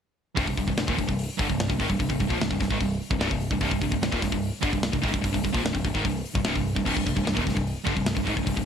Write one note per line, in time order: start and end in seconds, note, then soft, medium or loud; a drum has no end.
0.36 0.47 C1 loud
0.36 0.46 C2 medium
0.36 0.46 G2 loud
0.36 kick loud
0.36 open hi-hat medium
0.47 0.56 C1 medium
0.47 0.56 C2 medium
0.47 0.57 G2 medium
0.47 kick medium
0.57 0.67 C1 medium
0.57 0.67 C2 medium
0.57 0.67 G2 medium
0.57 kick medium
0.57 open hi-hat medium
0.67 0.77 C1 medium
0.67 0.77 C2 medium
0.67 0.76 G2 medium
0.67 kick medium
0.77 0.87 C1 medium
0.77 0.87 C2 medium
0.77 0.88 G2 medium
0.77 snare loud
0.77 open hi-hat medium
0.87 0.98 D#1 medium
0.87 0.97 D#2 loud
0.87 0.98 A#2 loud
0.87 kick loud
0.98 1.08 C1 medium
0.98 1.06 C2 medium
0.98 1.07 G2 medium
0.98 kick medium
0.98 open hi-hat medium
1.08 1.28 C1 medium
1.08 1.24 C2 medium
1.08 1.25 G2 medium
1.08 kick medium
1.19 open hi-hat loud
1.39 1.49 G1 medium
1.39 1.48 G2 medium
1.39 1.49 D3 loud
1.39 kick loud
1.39 open hi-hat medium
1.49 1.68 C1 medium
1.49 1.66 C2 medium
1.49 1.66 G2 medium
1.49 kick medium
1.60 snare loud
1.60 open hi-hat medium
1.69 1.79 C1 medium
1.69 1.80 C2 medium
1.69 1.80 G2 medium
1.69 kick medium
1.80 1.89 G#1 medium
1.80 1.90 G#2 medium
1.80 1.90 D#3 loud
1.80 kick medium
1.80 open hi-hat medium
1.90 1.99 C1 medium
1.90 1.98 C2 medium
1.90 1.99 G2 medium
1.90 kick medium
1.99 2.09 C1 medium
1.99 2.08 C2 medium
1.99 2.10 G2 medium
1.99 kick loud
1.99 open hi-hat loud
2.09 2.19 C1 medium
2.09 2.19 C2 medium
2.09 2.19 G2 medium
2.09 kick medium
2.20 2.29 C1 medium
2.20 2.29 C2 medium
2.20 2.29 G2 medium
2.20 kick medium
2.20 open hi-hat medium
2.29 2.39 A#1 loud
2.29 2.39 A#2 loud
2.29 2.39 F3 loud
2.29 kick medium
2.40 2.49 C1 medium
2.40 2.49 C2 medium
2.40 2.49 G2 medium
2.40 snare loud
2.40 open hi-hat medium
2.50 2.59 C1 medium
2.50 2.59 C2 medium
2.50 2.59 G2 medium
2.50 kick medium
2.60 2.70 C1 medium
2.60 2.70 C2 medium
2.60 2.70 G2 medium
2.60 kick medium
2.60 snare soft
2.60 open hi-hat medium
2.70 2.80 G#1 loud
2.70 2.80 G#2 loud
2.70 2.80 D#3 loud
2.70 kick medium
2.80 2.99 C1 medium
2.80 2.97 C2 medium
2.80 2.97 G2 medium
2.80 kick loud
2.80 open hi-hat medium
3.02 open hi-hat medium
3.11 3.19 C1 medium
3.11 3.20 C2 medium
3.11 3.21 G2 medium
3.11 kick loud
3.19 3.29 C1 medium
3.19 3.30 C2 loud
3.19 3.31 G2 loud
3.19 snare loud
3.19 open hi-hat medium
3.31 3.50 C1 medium
3.31 3.48 C2 medium
3.31 3.48 G2 medium
3.31 kick medium
3.40 open hi-hat medium
3.50 3.60 C1 medium
3.50 3.60 C2 medium
3.50 3.61 G2 medium
3.50 kick medium
3.61 3.70 C1 loud
3.61 3.71 C2 loud
3.61 3.71 G2 loud
3.61 kick loud
3.61 open hi-hat medium
3.71 3.81 C1 medium
3.71 3.82 C2 medium
3.71 3.82 G2 medium
3.71 kick medium
3.82 3.91 C1 medium
3.82 3.91 C2 medium
3.82 3.91 G2 medium
3.82 kick medium
3.82 open hi-hat medium
3.92 3.99 C1 medium
3.92 4.02 C2 medium
3.92 4.02 G2 medium
3.92 kick medium
4.00 4.10 C1 medium
4.00 4.11 C2 medium
4.00 4.12 G2 medium
4.00 snare loud
4.00 open hi-hat medium
4.12 4.22 D#1 loud
4.12 4.21 D#2 medium
4.12 4.22 A#2 loud
4.12 kick loud
4.22 4.32 C1 medium
4.22 4.31 C2 medium
4.22 4.31 G2 medium
4.22 kick loud
4.22 snare soft
4.22 open hi-hat medium
4.32 4.51 C1 medium
4.32 4.48 C2 medium
4.32 4.49 G2 medium
4.32 kick medium
4.43 open hi-hat medium
4.62 4.72 G1 medium
4.62 4.72 G2 medium
4.62 4.72 D3 loud
4.62 kick loud
4.62 open hi-hat medium
4.72 4.91 C1 medium
4.72 4.89 C2 medium
4.72 4.89 G2 medium
4.72 kick medium
4.83 snare loud
4.83 open hi-hat medium
4.92 5.02 C1 medium
4.92 5.01 C2 medium
4.92 5.02 G2 medium
4.92 kick loud
5.02 5.13 G#1 loud
5.02 5.11 G#2 medium
5.02 5.12 D#3 loud
5.02 kick medium
5.02 open hi-hat medium
5.12 5.23 C1 medium
5.12 5.20 C2 medium
5.12 5.21 G2 medium
5.12 kick medium
5.21 5.33 C1 medium
5.21 5.31 C2 medium
5.21 5.32 G2 medium
5.21 kick loud
5.21 open hi-hat loud
5.33 5.43 C1 medium
5.33 5.42 C2 medium
5.33 5.43 G2 medium
5.33 kick medium
5.43 5.53 C1 medium
5.43 5.52 C2 medium
5.43 5.53 G2 medium
5.43 kick medium
5.43 open hi-hat medium
5.53 5.62 A#1 loud
5.53 5.62 A#2 medium
5.53 5.63 F3 loud
5.53 kick medium
5.63 5.72 C1 medium
5.63 5.72 C2 medium
5.63 5.72 G2 medium
5.63 snare loud
5.63 open hi-hat medium
5.73 5.84 C1 medium
5.73 5.83 C2 medium
5.73 5.83 G2 medium
5.73 kick medium
5.84 5.94 C1 medium
5.84 5.94 C2 medium
5.84 5.94 G2 medium
5.84 kick medium
5.84 open hi-hat medium
5.94 6.04 G#1 medium
5.94 6.04 G#2 medium
5.94 6.04 D#3 loud
5.94 kick medium
6.05 6.23 C1 medium
6.05 6.21 C2 medium
6.05 6.21 G2 medium
6.05 kick loud
6.05 open hi-hat medium
6.25 open hi-hat medium
6.35 6.44 C1 medium
6.35 6.45 C2 medium
6.35 6.45 G2 medium
6.35 kick loud
6.44 6.54 C1 medium
6.44 6.55 C2 loud
6.44 6.55 G2 loud
6.44 snare loud
6.44 open hi-hat medium
6.56 6.74 C1 medium
6.56 6.71 C2 medium
6.56 6.72 G2 medium
6.56 kick medium
6.67 open hi-hat medium
6.76 6.85 C1 medium
6.76 6.84 C2 medium
6.76 6.86 G2 medium
6.76 kick medium
6.85 6.95 C1 medium
6.85 6.95 C2 medium
6.85 6.95 G2 loud
6.85 kick loud
6.85 crash loud
6.96 7.05 C1 medium
6.96 7.05 C2 medium
6.96 7.05 G2 medium
6.96 kick medium
7.06 7.15 C1 medium
7.06 7.15 C2 medium
7.06 7.15 G2 medium
7.06 kick medium
7.06 open hi-hat medium
7.16 7.25 C1 medium
7.16 7.24 C2 medium
7.16 7.24 G2 medium
7.16 kick medium
7.25 7.35 C1 medium
7.25 7.34 C2 medium
7.25 7.36 G2 medium
7.25 snare loud
7.25 open hi-hat medium
7.35 7.46 D#1 loud
7.35 7.44 D#2 medium
7.35 7.44 A#2 loud
7.35 kick loud
7.45 7.55 C1 medium
7.45 7.54 C2 medium
7.45 7.55 G2 medium
7.45 kick medium
7.45 snare soft
7.45 open hi-hat medium
7.55 7.75 C1 medium
7.55 7.72 C2 medium
7.55 7.72 G2 medium
7.55 kick medium
7.67 open hi-hat medium
7.85 7.96 G1 medium
7.85 7.95 G2 medium
7.85 7.96 D3 loud
7.85 kick loud
7.85 open hi-hat medium
7.96 8.15 C1 medium
7.96 8.12 C2 medium
7.96 8.12 G2 medium
7.96 kick loud
8.06 snare loud
8.06 open hi-hat medium
8.15 8.26 C1 medium
8.15 8.25 C2 medium
8.15 8.26 G2 medium
8.15 kick loud
8.25 8.36 G#1 loud
8.25 8.34 G#2 medium
8.25 8.35 D#3 loud
8.25 kick medium
8.25 open hi-hat medium
8.35 8.46 C1 medium
8.35 8.45 C2 medium
8.35 8.45 G2 medium
8.35 kick medium
8.40 8.48 G2 medium
8.46 8.56 C1 medium
8.46 8.55 C2 medium
8.46 8.55 G2 medium
8.46 kick loud
8.46 open hi-hat loud
8.56 8.65 C1 medium
8.56 8.64 C2 medium
8.56 8.64 G2 medium
8.56 kick medium